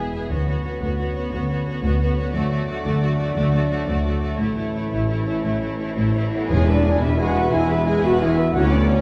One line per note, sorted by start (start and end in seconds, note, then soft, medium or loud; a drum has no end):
0.00 0.22 E1 soft
0.00 0.22 E2 soft
0.00 0.27 B2 soft
0.00 0.31 E3 soft
0.00 0.27 G#3 soft
0.00 0.14 B3 soft
0.00 0.47 B3 soft
0.00 2.30 B3 soft
0.00 0.27 E4 soft
0.00 0.32 E4 soft
0.00 0.12 G#4 soft
0.00 0.32 G#4 soft
0.00 0.12 B4 soft
0.00 0.12 E5 soft
0.13 0.31 B3 soft
0.13 0.30 G#4 soft
0.13 2.35 B4 soft
0.13 0.30 E5 soft
0.29 0.73 D2 soft
0.29 1.33 D3 soft
0.29 4.36 D3 soft
0.29 4.36 F#3 soft
0.29 0.48 B3 soft
0.29 2.30 C#4 soft
0.29 0.47 F#4 soft
0.29 0.47 C#5 soft
0.48 0.81 B3 soft
0.48 0.64 B3 soft
0.48 0.64 F#4 soft
0.48 0.63 C#5 soft
0.64 0.80 B3 soft
0.64 0.98 F#4 soft
0.64 0.80 F#4 soft
0.64 0.80 C#5 soft
0.81 1.24 D2 medium
0.81 0.98 B3 soft
0.81 1.49 B3 soft
0.81 0.97 F#4 soft
0.81 0.97 C#5 soft
0.98 1.15 B3 soft
0.98 1.15 F#4 soft
0.98 1.65 F#4 soft
0.98 1.15 C#5 soft
1.16 1.31 B3 soft
1.16 1.32 F#4 soft
1.16 1.31 C#5 soft
1.16 2.16 C#5 soft
1.32 1.75 D2 medium
1.32 2.34 D3 soft
1.32 1.48 B3 soft
1.32 1.49 F#4 soft
1.32 1.48 C#5 soft
1.49 1.66 B3 soft
1.49 1.82 B3 soft
1.49 1.66 F#4 soft
1.49 1.65 C#5 soft
1.66 1.83 B3 soft
1.66 1.99 F#4 soft
1.66 1.82 F#4 soft
1.66 1.81 C#5 soft
1.82 2.26 D2 medium
1.82 2.35 B3 soft
1.82 1.99 B3 soft
1.82 2.00 F#4 soft
1.82 1.99 C#5 soft
2.00 2.17 B3 soft
2.00 2.67 F#4 soft
2.00 2.16 F#4 soft
2.00 2.16 C#5 soft
2.17 2.35 B3 soft
2.17 2.33 F#4 soft
2.17 2.34 C#5 soft
2.17 2.35 C#5 soft
2.33 2.76 D2 medium
2.33 4.41 D3 medium
2.33 6.15 A3 medium
2.33 2.49 A3 medium
2.33 4.35 D4 medium
2.33 2.49 F#4 medium
2.33 2.49 D5 soft
2.50 2.67 A3 soft
2.50 2.84 A3 soft
2.50 2.67 F#4 soft
2.50 2.66 D5 soft
2.67 2.84 A3 soft
2.67 3.00 F#4 soft
2.67 2.84 F#4 soft
2.67 2.82 D5 soft
2.83 3.27 D2 medium
2.83 3.51 A3 soft
2.83 3.01 A3 medium
2.83 3.00 F#4 medium
2.83 2.98 D5 medium
2.99 3.18 A3 soft
2.99 3.17 F#4 soft
2.99 3.68 F#4 soft
2.99 3.15 D5 soft
3.16 3.35 A3 medium
3.16 3.34 F#4 soft
3.16 3.32 D5 medium
3.16 4.21 D5 soft
3.33 3.78 D2 medium
3.33 3.79 D2 medium
3.33 3.52 A3 medium
3.33 4.41 D4 soft
3.33 3.52 F#4 medium
3.33 3.50 D5 soft
3.51 3.87 A3 soft
3.51 3.68 A3 soft
3.51 3.68 F#4 soft
3.51 3.68 D5 medium
3.69 3.87 A3 soft
3.69 3.86 F#4 soft
3.69 4.04 F#4 soft
3.69 3.84 D5 soft
3.86 4.30 D2 medium
3.86 4.31 D2 medium
3.86 4.56 A3 soft
3.86 4.05 A3 soft
3.86 4.04 F#4 soft
3.86 4.01 D5 soft
4.02 4.22 A3 soft
4.02 4.41 F#4 soft
4.02 4.20 F#4 soft
4.02 4.20 D5 soft
4.21 4.39 A3 soft
4.21 4.39 F#4 soft
4.21 4.38 D5 soft
4.21 4.41 D5 soft
4.38 4.83 A1 medium
4.38 4.83 A2 medium
4.38 6.51 A2 soft
4.38 6.29 A2 medium
4.38 6.28 E3 medium
4.38 4.56 A3 soft
4.38 6.15 C#4 medium
4.38 4.55 E4 soft
4.38 4.54 C#5 soft
4.56 4.73 A3 soft
4.56 4.90 A3 soft
4.56 4.73 E4 soft
4.56 4.71 C#5 soft
4.72 4.91 A3 soft
4.72 5.09 E4 soft
4.72 4.90 E4 soft
4.72 4.90 C#5 soft
4.91 5.36 A1 medium
4.91 5.36 A2 soft
4.91 5.62 A3 soft
4.91 5.08 A3 soft
4.91 5.08 E4 soft
4.91 5.07 C#5 soft
5.09 5.25 A3 soft
5.09 5.25 E4 soft
5.09 5.79 E4 soft
5.09 5.25 C#5 soft
5.26 5.43 A3 soft
5.26 5.43 E4 soft
5.26 5.42 C#5 soft
5.26 6.31 C#5 soft
5.43 5.88 A1 medium
5.43 5.88 A2 medium
5.43 6.49 E3 soft
5.43 5.61 A3 soft
5.43 5.60 E4 soft
5.43 5.59 C#5 soft
5.60 5.79 A3 soft
5.60 5.96 A3 soft
5.60 5.78 E4 soft
5.60 5.77 C#5 soft
5.78 5.96 A3 soft
5.78 5.95 E4 soft
5.78 6.14 E4 soft
5.78 5.95 C#5 soft
5.96 6.41 A1 soft
5.96 6.41 A2 medium
5.96 6.14 A3 soft
5.96 6.51 A3 soft
5.96 6.13 E4 soft
5.96 6.12 C#5 soft
6.13 6.32 A3 soft
6.13 6.30 E4 soft
6.13 6.65 E4 soft
6.13 6.31 C#5 soft
6.32 6.50 A3 soft
6.32 6.48 B3 medium
6.32 6.49 E4 soft
6.32 6.48 B4 medium
6.32 6.49 C#5 soft
6.32 6.51 C#5 soft
6.48 6.95 E1 medium
6.48 6.95 E2 medium
6.48 6.97 E2 medium
6.48 8.56 E3 medium
6.48 8.51 E3 medium
6.48 8.51 G#3 medium
6.48 6.67 G#3 medium
6.48 6.67 C#4 medium
6.48 6.65 G#4 medium
6.48 6.67 C#5 medium
6.48 6.65 G#5 medium
6.48 tam-tam medium
6.59 8.44 G#3 soft
6.66 6.85 B3 medium
6.66 7.00 D4 medium
6.66 8.36 E4 soft
6.66 6.84 B4 medium
6.66 7.01 D5 medium
6.66 6.84 E5 medium
6.76 8.28 B4 medium
6.84 7.02 G#3 medium
6.84 7.01 G#4 medium
6.84 8.18 G#4 medium
6.84 7.01 G#5 medium
6.92 8.10 E5 medium
7.00 7.46 E1 medium
7.00 7.46 E2 medium
7.00 7.19 B3 medium
7.00 7.08 E4 medium
7.00 7.18 B4 medium
7.00 7.18 E5 medium
7.00 7.19 E5 medium
7.00 7.17 B5 medium
7.09 7.26 G#5 medium
7.18 7.34 G#3 medium
7.18 7.51 F#4 medium
7.18 7.34 G#4 medium
7.18 7.52 F#5 medium
7.18 7.35 G#5 medium
7.18 7.35 B5 soft
7.27 7.43 G#5 medium
7.35 7.52 B3 medium
7.35 7.52 B4 soft
7.35 7.52 E5 medium
7.35 7.51 B5 medium
7.44 7.59 G#5 medium
7.51 7.97 E1 medium
7.51 7.97 E2 medium
7.51 7.69 G#3 medium
7.51 7.87 E4 medium
7.51 7.69 G#4 medium
7.51 7.86 E5 medium
7.51 7.70 G#5 medium
7.51 7.68 B5 medium
7.61 7.77 G#5 medium
7.69 7.87 B3 medium
7.69 7.87 B4 medium
7.69 7.86 E5 medium
7.69 7.85 B5 medium
7.78 7.94 G#5 medium
7.86 8.03 G#3 medium
7.86 8.02 G#4 medium
7.86 8.03 G#4 medium
7.86 7.92 G#5 medium
7.86 8.02 G#5 medium
7.86 8.02 B5 medium
7.95 8.56 G#5 medium
8.02 8.48 E1 medium
8.02 8.48 E2 medium
8.02 8.20 B3 medium
8.02 8.20 F#4 medium
8.02 8.20 B4 medium
8.02 8.20 E5 medium
8.02 8.11 F#5 medium
8.02 9.01 B5 medium
8.11 8.55 E5 medium
8.20 8.38 G#3 medium
8.20 8.53 E4 medium
8.20 8.37 G#4 medium
8.20 8.55 G#4 medium
8.20 8.54 E5 medium
8.20 8.37 G#5 medium
8.29 8.87 B4 medium
8.37 8.54 B3 medium
8.37 8.56 E4 soft
8.37 8.54 B4 medium
8.37 8.54 E5 medium
8.45 8.55 G#3 soft
8.53 8.98 D2 medium
8.53 8.99 D2 medium
8.53 9.01 D3 medium
8.53 9.01 F#3 medium
8.53 9.01 B3 medium
8.53 8.70 C#4 medium
8.53 8.62 F#4 loud
8.53 8.69 C#5 medium
8.53 8.70 D5 medium
8.53 8.70 F#5 medium
8.63 9.01 B3 soft
8.70 9.01 C#3 medium
8.70 8.88 B3 medium
8.70 9.01 C#4 medium
8.70 9.01 C#5 medium
8.70 8.88 D5 medium
8.70 8.88 F#5 medium
8.79 9.01 F#4 medium
8.87 9.01 C#4 medium
8.87 9.01 B4 medium
8.87 9.01 C#5 medium
8.87 9.01 D5 medium
8.96 9.01 C#6 medium